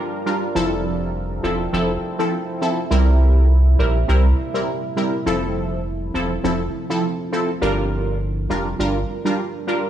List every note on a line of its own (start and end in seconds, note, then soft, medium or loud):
0.00 0.53 G3 medium
0.00 0.53 D4 medium
0.00 0.53 F4 medium
0.00 0.53 A#4 medium
0.26 0.44 G3 medium
0.26 0.44 D4 medium
0.26 0.44 F4 medium
0.26 0.45 A#4 medium
0.55 1.40 F1 loud
0.55 1.10 F3 loud
0.55 2.89 F3 medium
0.55 1.10 C4 medium
0.55 2.88 C4 medium
0.55 1.10 E4 medium
0.55 7.57 E4 medium
0.55 1.10 A4 loud
0.55 2.89 A4 medium
1.43 1.68 E1 medium
1.43 1.62 F3 medium
1.43 1.62 C4 medium
1.43 1.62 E4 medium
1.43 1.62 A4 medium
1.73 1.97 F1 loud
1.73 1.91 F3 medium
1.73 1.91 C4 medium
1.73 1.91 E4 medium
1.73 1.92 A4 loud
2.19 2.34 F3 medium
2.19 2.34 C4 medium
2.19 2.34 E4 medium
2.19 2.34 A4 medium
2.61 2.80 F3 medium
2.61 2.80 C4 medium
2.61 2.80 E4 medium
2.61 2.80 A4 medium
2.90 3.75 C2 loud
2.90 5.24 C3 medium
2.90 3.45 G3 medium
2.90 5.24 G3 medium
2.90 5.24 A#3 medium
2.90 3.45 C4 medium
2.90 3.46 E4 medium
2.90 3.46 A#4 loud
3.79 4.03 A#1 medium
3.79 3.97 G3 medium
3.79 3.97 C4 medium
3.79 3.97 E4 medium
3.79 3.97 A#4 medium
4.08 4.33 C2 loud
4.08 4.27 G3 medium
4.08 4.27 C4 medium
4.08 4.27 E4 medium
4.08 4.27 A#4 loud
4.54 4.69 G3 medium
4.54 4.69 C4 medium
4.54 4.70 E4 medium
4.54 4.70 A#4 medium
4.97 5.15 G3 medium
4.97 5.15 C4 medium
4.97 5.15 E4 medium
4.97 5.15 A#4 medium
5.26 6.10 F1 loud
5.26 5.81 F3 medium
5.26 7.59 F3 medium
5.26 5.81 C4 medium
5.26 7.59 C4 medium
5.26 5.81 E4 medium
5.26 5.81 A4 loud
5.26 7.59 A4 medium
6.14 6.39 E1 medium
6.14 6.32 F3 medium
6.14 6.33 C4 medium
6.14 6.33 E4 medium
6.14 6.33 A4 medium
6.44 6.68 F1 loud
6.44 6.62 F3 medium
6.44 6.62 C4 medium
6.44 6.62 E4 medium
6.44 6.62 A4 loud
6.90 7.05 F3 medium
6.90 7.05 C4 medium
6.90 7.05 E4 medium
6.90 7.05 A4 medium
7.32 7.50 F3 medium
7.32 7.50 C4 medium
7.32 7.50 E4 medium
7.32 7.51 A4 medium
7.61 8.46 G1 loud
7.61 8.16 G3 medium
7.61 9.90 G3 medium
7.61 9.90 D4 medium
7.61 8.16 D4 medium
7.61 9.90 F4 medium
7.61 8.16 F4 medium
7.61 9.90 A#4 medium
7.61 8.16 A#4 loud
8.50 8.74 F1 medium
8.50 8.68 G3 medium
8.50 8.68 D4 medium
8.50 8.68 F4 medium
8.50 8.68 A#4 medium
8.79 9.03 G1 loud
8.79 8.97 G3 medium
8.79 8.98 D4 medium
8.79 8.98 F4 medium
8.79 8.98 A#4 loud
9.25 9.40 G3 medium
9.25 9.40 D4 medium
9.25 9.40 F4 medium
9.25 9.40 A#4 medium
9.67 9.85 G3 medium
9.67 9.86 D4 medium
9.67 9.86 F4 medium
9.67 9.86 A#4 medium